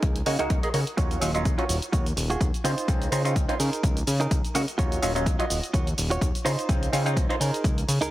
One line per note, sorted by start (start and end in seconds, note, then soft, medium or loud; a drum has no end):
0.00 0.22 C#2 medium
0.00 0.18 D#4 medium
0.00 0.18 G#4 medium
0.00 0.18 A#4 loud
0.00 kick loud
0.00 closed hi-hat medium
0.16 closed hi-hat soft
0.26 0.37 C#3 medium
0.26 0.36 G#3 medium
0.26 0.36 A#3 medium
0.26 0.36 D#4 medium
0.26 0.37 F#4 medium
0.26 muted clean electric guitar stroke soft
0.26 open hi-hat loud
0.39 0.48 C#2 soft
0.39 0.60 G#3 medium
0.39 0.60 A#3 medium
0.39 0.56 D#4 medium
0.39 0.60 D#4 medium
0.39 0.60 F#4 loud
0.39 0.57 G#4 medium
0.39 0.57 A#4 medium
0.39 closed hi-hat soft
0.50 0.61 C#2 medium
0.50 kick loud
0.50 closed hi-hat medium
0.63 0.69 G#3 medium
0.63 0.69 A#3 medium
0.63 0.69 D#4 medium
0.63 0.69 G#4 loud
0.63 closed hi-hat soft
0.73 0.85 C#3 medium
0.73 0.80 G#3 medium
0.73 0.81 A#3 medium
0.73 0.81 D#4 medium
0.73 0.81 F#4 medium
0.73 muted clean electric guitar stroke soft
0.73 open hi-hat medium
0.87 closed hi-hat soft
0.97 1.18 D#2 loud
0.97 1.19 F#3 medium
0.97 1.19 C#4 medium
0.97 1.19 D#4 medium
0.97 1.28 F4 loud
0.97 1.19 F4 medium
0.97 1.28 F#4 medium
0.97 1.29 C#5 loud
0.97 kick loud
0.97 closed hi-hat medium
0.97 cabasa soft
1.11 closed hi-hat soft
1.11 cabasa soft
1.21 1.47 D#1 loud
1.21 1.31 F#3 medium
1.21 1.32 C#4 medium
1.21 1.32 D#4 medium
1.21 1.32 F4 medium
1.21 open hi-hat loud
1.21 cabasa medium
1.34 1.55 F#3 medium
1.34 1.55 C#4 medium
1.34 1.55 D#4 medium
1.34 1.56 F4 loud
1.34 closed hi-hat soft
1.34 cabasa soft
1.45 1.56 D#2 medium
1.45 kick loud
1.45 closed hi-hat medium
1.45 cabasa soft
1.58 1.64 F#3 medium
1.58 1.64 C#4 medium
1.58 1.64 D#4 medium
1.58 1.75 F4 medium
1.58 1.64 F4 loud
1.58 1.76 F#4 medium
1.58 1.76 C#5 medium
1.58 closed hi-hat soft
1.69 1.80 D#1 medium
1.69 open hi-hat medium
1.69 cabasa medium
1.82 closed hi-hat soft
1.82 cabasa soft
1.92 2.13 D#2 loud
1.92 2.06 F4 medium
1.92 2.06 F#4 medium
1.92 2.06 C#5 medium
1.92 kick loud
1.92 closed hi-hat medium
1.92 cabasa soft
2.06 closed hi-hat soft
2.06 cabasa soft
2.17 2.36 D#1 medium
2.17 muted clean electric guitar stroke soft
2.17 open hi-hat loud
2.17 cabasa medium
2.30 2.47 F4 medium
2.30 2.47 F#4 medium
2.30 2.48 G#4 loud
2.30 closed hi-hat soft
2.30 cabasa soft
2.41 2.51 D#2 loud
2.41 kick loud
2.41 closed hi-hat medium
2.41 cabasa soft
2.54 closed hi-hat soft
2.54 cabasa soft
2.64 2.75 C#3 medium
2.64 2.71 C4 loud
2.64 2.71 C#4 medium
2.64 3.32 D#4 medium
2.64 2.71 D#4 medium
2.64 3.32 F4 medium
2.64 2.71 F4 loud
2.64 3.32 C5 loud
2.64 open hi-hat medium
2.64 cabasa medium
2.78 closed hi-hat soft
2.78 cabasa soft
2.88 3.08 C#2 loud
2.88 3.09 C4 medium
2.88 3.10 C#4 medium
2.88 3.10 D#4 medium
2.88 3.10 F4 medium
2.88 kick loud
2.88 closed hi-hat medium
2.88 cabasa soft
3.02 closed hi-hat soft
3.02 cabasa soft
3.12 3.37 C#3 loud
3.12 3.22 C4 medium
3.12 3.22 C#4 medium
3.12 3.22 D#4 medium
3.12 3.22 F4 medium
3.12 open hi-hat loud
3.12 cabasa medium
3.25 3.46 C4 medium
3.25 3.46 C#4 medium
3.25 3.46 D#4 medium
3.25 3.46 F4 loud
3.25 closed hi-hat soft
3.25 cabasa soft
3.36 3.46 C#2 medium
3.36 kick medium
3.36 closed hi-hat medium
3.36 cabasa soft
3.48 3.54 C4 medium
3.48 3.54 C#4 medium
3.48 3.58 D#4 medium
3.48 3.54 D#4 medium
3.48 3.59 F4 medium
3.48 3.55 F4 loud
3.48 3.60 C5 medium
3.48 closed hi-hat soft
3.59 3.70 C#3 medium
3.59 3.99 D#4 medium
3.59 3.99 G#4 medium
3.59 3.99 A#4 loud
3.59 open hi-hat medium
3.59 cabasa medium
3.73 closed hi-hat soft
3.73 cabasa soft
3.83 4.03 C#2 loud
3.83 kick loud
3.83 closed hi-hat medium
3.83 cabasa soft
3.97 closed hi-hat soft
3.97 cabasa soft
4.07 4.27 C#3 loud
4.07 muted clean electric guitar stroke soft
4.07 open hi-hat loud
4.07 cabasa medium
4.20 4.37 D#4 medium
4.20 4.38 G#4 medium
4.20 4.38 A#4 medium
4.20 closed hi-hat soft
4.20 cabasa soft
4.31 4.42 C#2 loud
4.31 kick loud
4.31 closed hi-hat medium
4.31 cabasa soft
4.45 closed hi-hat soft
4.45 cabasa soft
4.54 4.66 C#3 loud
4.54 4.61 G#3 medium
4.54 4.62 A#3 medium
4.54 4.62 D#4 medium
4.54 4.62 F#4 loud
4.54 muted clean electric guitar stroke soft
4.54 open hi-hat medium
4.54 cabasa medium
4.68 closed hi-hat soft
4.68 cabasa soft
4.78 4.98 D#2 loud
4.78 5.00 F#3 medium
4.78 5.00 C#4 medium
4.78 5.00 D#4 medium
4.78 5.09 F4 loud
4.78 5.00 F4 medium
4.78 5.09 F#4 loud
4.78 5.09 C#5 loud
4.78 kick loud
4.78 closed hi-hat medium
4.78 cabasa soft
4.92 closed hi-hat soft
4.92 cabasa soft
5.02 5.28 D#1 loud
5.02 5.12 F#3 medium
5.02 5.13 C#4 medium
5.02 5.13 D#4 medium
5.02 5.13 F4 medium
5.02 open hi-hat loud
5.02 cabasa medium
5.15 5.36 F#3 medium
5.15 5.36 C#4 medium
5.15 5.36 D#4 medium
5.15 5.37 F4 loud
5.15 closed hi-hat soft
5.15 cabasa soft
5.26 5.37 D#2 medium
5.26 kick medium
5.26 closed hi-hat medium
5.26 cabasa soft
5.39 5.45 F#3 loud
5.39 5.45 C#4 medium
5.39 5.45 D#4 medium
5.39 5.57 F4 medium
5.39 5.45 F4 loud
5.39 5.57 F#4 medium
5.39 5.57 D#5 loud
5.39 closed hi-hat soft
5.50 5.61 D#1 medium
5.50 open hi-hat medium
5.50 cabasa medium
5.63 closed hi-hat soft
5.63 cabasa soft
5.73 5.94 D#2 loud
5.73 5.87 F4 medium
5.73 5.87 F#4 medium
5.73 5.88 C#5 medium
5.73 kick loud
5.73 closed hi-hat medium
5.73 cabasa soft
5.87 closed hi-hat soft
5.87 cabasa soft
5.97 6.18 D#1 medium
5.97 muted clean electric guitar stroke soft
5.97 open hi-hat loud
5.97 cabasa medium
6.10 6.28 F4 medium
6.10 6.28 F#4 medium
6.10 6.28 C#5 loud
6.10 closed hi-hat soft
6.10 cabasa soft
6.21 6.32 D#2 loud
6.21 kick loud
6.21 closed hi-hat medium
6.21 cabasa soft
6.35 closed hi-hat soft
6.35 cabasa soft
6.45 6.56 C#3 medium
6.45 6.52 C4 medium
6.45 6.52 C#4 medium
6.45 7.12 D#4 medium
6.45 6.52 D#4 medium
6.45 7.13 F4 medium
6.45 6.52 F4 loud
6.45 7.13 C5 loud
6.45 open hi-hat medium
6.45 cabasa medium
6.59 closed hi-hat soft
6.59 cabasa soft
6.69 6.89 C#2 loud
6.69 6.90 C4 medium
6.69 6.90 C#4 medium
6.69 6.91 D#4 medium
6.69 6.91 F4 medium
6.69 kick loud
6.69 closed hi-hat medium
6.69 cabasa soft
6.83 closed hi-hat soft
6.83 cabasa soft
6.93 7.18 C#3 loud
6.93 7.03 C4 medium
6.93 7.03 C#4 medium
6.93 7.03 D#4 medium
6.93 7.03 F4 medium
6.93 open hi-hat loud
6.93 cabasa medium
7.06 7.27 C4 medium
7.06 7.27 C#4 medium
7.06 7.27 D#4 medium
7.06 7.27 F4 loud
7.06 closed hi-hat soft
7.06 cabasa soft
7.17 7.27 C#2 medium
7.17 kick medium
7.17 closed hi-hat medium
7.17 cabasa soft
7.29 7.35 C4 medium
7.29 7.35 C#4 medium
7.29 7.39 D#4 medium
7.29 7.35 D#4 medium
7.29 7.40 F4 medium
7.29 7.36 F4 loud
7.29 7.41 C5 medium
7.29 closed hi-hat soft
7.40 7.51 C#3 medium
7.40 7.79 D#4 medium
7.40 7.80 G#4 medium
7.40 7.80 A#4 loud
7.40 open hi-hat medium
7.40 cabasa medium
7.54 closed hi-hat soft
7.54 cabasa soft
7.64 7.84 C#2 loud
7.64 kick loud
7.64 closed hi-hat medium
7.64 cabasa soft
7.78 closed hi-hat soft
7.78 cabasa soft
7.88 7.99 C#3 medium
7.88 muted clean electric guitar stroke soft
7.88 open hi-hat loud
7.88 cabasa medium
8.01 8.10 C#2 soft
8.01 8.11 D#4 medium
8.01 8.11 G#4 medium
8.01 8.11 A#4 loud
8.01 closed hi-hat soft
8.01 cabasa soft